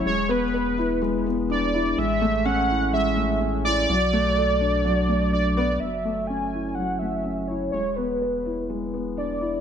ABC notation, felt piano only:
X:1
M:4/4
L:1/8
Q:1/4=125
K:F#m
V:1 name="Felt piano"
G, B, B E G, B, D E | G, A, C E G, A, C E | F, A, A D F, A, D B, | F, A, C E F, A, C E |
G, B, B E G, B, D E |]